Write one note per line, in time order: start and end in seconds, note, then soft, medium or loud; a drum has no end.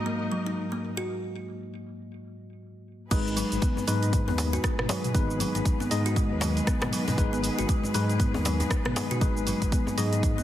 0.00 1.04 G#2 medium
0.00 3.09 G#2 medium
0.00 1.06 F#3 medium
0.00 1.06 A#3 medium
0.00 3.09 A#3 medium
0.00 1.06 D#4 medium
0.00 3.09 F#4 medium
0.00 1.06 A#4 medium
0.00 1.06 D#5 medium
0.00 3.09 D#5 medium
0.06 0.20 A#3 medium
0.32 0.40 F#3 medium
0.46 0.56 D#4 medium
0.72 0.81 A#3 medium
0.97 1.07 F#4 loud
3.11 3.42 G#1 loud
3.11 10.43 D#3 medium
3.11 3.25 G#3 loud
3.11 3.85 G#3 medium
3.11 10.43 G#3 medium
3.11 10.43 B3 medium
3.11 3.85 D#4 medium
3.11 10.43 G#4 medium
3.11 3.85 B4 loud
3.11 10.43 B4 medium
3.11 kick loud
3.11 closed hi-hat medium
3.11 crash loud
3.11 cabasa medium
3.27 cabasa soft
3.37 3.51 F#3 medium
3.37 open hi-hat medium
3.37 cabasa medium
3.52 3.58 G#1 medium
3.52 closed hi-hat soft
3.52 cabasa soft
3.62 3.76 B3 medium
3.62 kick loud
3.62 closed hi-hat medium
3.62 cabasa medium
3.77 djembe tone medium
3.77 cabasa soft
3.87 4.29 G#2 medium
3.87 3.96 F#3 medium
3.87 5.12 G#3 medium
3.87 5.12 D#4 medium
3.87 5.12 B4 loud
3.87 open hi-hat medium
3.87 cabasa medium
4.03 4.12 D#4 medium
4.03 closed hi-hat soft
4.03 cabasa soft
4.13 kick loud
4.13 closed hi-hat medium
4.13 cabasa medium
4.28 4.57 D#2 medium
4.28 4.37 B3 medium
4.28 djembe tone medium
4.38 open hi-hat medium
4.38 djembe slap loud
4.38 cabasa medium
4.53 4.63 F#4 loud
4.53 closed hi-hat soft
4.53 djembe tone medium
4.53 cabasa soft
4.64 4.77 G#3 loud
4.64 kick loud
4.64 cross-stick loud
4.64 closed hi-hat medium
4.64 cabasa medium
4.79 4.85 G#1 loud
4.79 cross-stick loud
4.79 mid tom medium
4.89 5.03 F#3 medium
4.89 open hi-hat medium
4.89 djembe slap loud
4.89 cabasa medium
5.04 closed hi-hat soft
5.04 mid tom medium
5.04 cabasa soft
5.15 5.46 G#1 loud
5.15 5.88 G#3 medium
5.15 5.28 B3 medium
5.15 5.88 D#4 medium
5.15 5.88 B4 medium
5.15 kick loud
5.15 closed hi-hat medium
5.15 cabasa medium
5.31 cabasa soft
5.40 5.48 F#3 medium
5.40 open hi-hat medium
5.40 djembe tone medium
5.40 cabasa loud
5.55 5.61 G#1 medium
5.55 5.64 D#4 medium
5.55 closed hi-hat soft
5.55 cabasa soft
5.65 kick loud
5.65 closed hi-hat medium
5.65 cabasa medium
5.80 5.90 B3 medium
5.80 djembe tone medium
5.80 cabasa soft
5.91 6.33 G#2 medium
5.91 7.16 G#3 loud
5.91 7.16 D#4 medium
5.91 7.16 D#5 loud
5.91 open hi-hat medium
5.91 cabasa loud
6.06 6.15 F#4 loud
6.06 closed hi-hat soft
6.06 cabasa soft
6.16 6.30 G#3 loud
6.16 kick loud
6.16 closed hi-hat medium
6.16 cabasa medium
6.31 6.61 D#2 medium
6.41 6.56 F#3 medium
6.41 open hi-hat medium
6.41 djembe slap loud
6.41 cabasa loud
6.57 closed hi-hat soft
6.57 cabasa soft
6.67 6.81 B3 medium
6.67 kick loud
6.67 cross-stick medium
6.67 closed hi-hat medium
6.67 cabasa medium
6.82 6.89 G#1 loud
6.82 cross-stick loud
6.82 mid tom medium
6.82 djembe slap loud
6.93 7.01 F#3 medium
6.93 open hi-hat medium
6.93 cabasa medium
7.08 7.17 D#4 medium
7.08 open hi-hat medium
7.08 mid tom medium
7.08 djembe tone medium
7.08 cabasa soft
7.18 7.49 G#1 loud
7.18 7.92 G#3 medium
7.18 7.92 D#4 medium
7.18 7.92 B4 loud
7.18 kick loud
7.18 closed hi-hat medium
7.18 cabasa medium
7.33 7.42 B3 medium
7.33 cabasa soft
7.44 open hi-hat medium
7.44 cabasa medium
7.59 7.65 G#1 medium
7.59 7.68 F#4 loud
7.59 closed hi-hat soft
7.59 cabasa soft
7.69 7.82 G#3 loud
7.69 kick loud
7.69 closed hi-hat medium
7.69 cabasa medium
7.83 djembe tone medium
7.83 cabasa soft
7.94 8.36 G#2 medium
7.94 8.09 F#3 medium
7.94 9.19 G#3 medium
7.94 9.19 D#4 medium
7.94 9.19 B4 loud
7.94 open hi-hat medium
7.94 cabasa loud
8.09 closed hi-hat soft
8.09 cabasa soft
8.20 8.33 B3 medium
8.20 kick loud
8.20 closed hi-hat medium
8.20 cabasa medium
8.34 8.64 D#2 medium
8.34 djembe tone loud
8.45 8.53 F#3 medium
8.45 open hi-hat medium
8.45 djembe slap loud
8.45 cabasa loud
8.60 8.69 D#4 medium
8.60 closed hi-hat soft
8.60 djembe tone medium
8.60 cabasa soft
8.70 kick loud
8.70 cross-stick medium
8.70 closed hi-hat medium
8.70 cabasa medium
8.85 8.92 G#1 loud
8.85 8.95 B3 medium
8.85 cross-stick medium
8.85 mid tom medium
8.96 open hi-hat medium
8.96 djembe slap loud
8.96 cabasa loud
9.11 9.20 F#4 loud
9.11 closed hi-hat soft
9.11 mid tom medium
9.11 cabasa soft
9.21 9.53 G#1 loud
9.21 9.35 G#3 loud
9.21 9.95 G#3 medium
9.21 9.95 D#4 medium
9.21 9.95 B4 medium
9.21 kick loud
9.21 closed hi-hat medium
9.21 cabasa medium
9.37 cabasa soft
9.47 9.61 F#3 medium
9.47 open hi-hat medium
9.47 djembe tone medium
9.47 cabasa medium
9.62 9.68 G#1 medium
9.62 kick medium
9.62 closed hi-hat soft
9.62 cabasa soft
9.72 9.86 B3 medium
9.72 kick loud
9.72 closed hi-hat medium
9.72 cabasa medium
9.87 djembe tone medium
9.87 cabasa soft
9.98 10.40 G#2 medium
9.98 10.06 F#3 medium
9.98 10.43 G#3 medium
9.98 10.43 D#4 medium
9.98 10.43 D#5 loud
9.98 open hi-hat medium
9.98 cabasa loud
10.13 10.22 D#4 medium
10.13 closed hi-hat soft
10.13 cabasa soft
10.23 kick loud
10.23 closed hi-hat medium
10.23 cabasa medium
10.38 10.43 D#2 medium
10.38 10.43 B3 medium
10.38 cabasa soft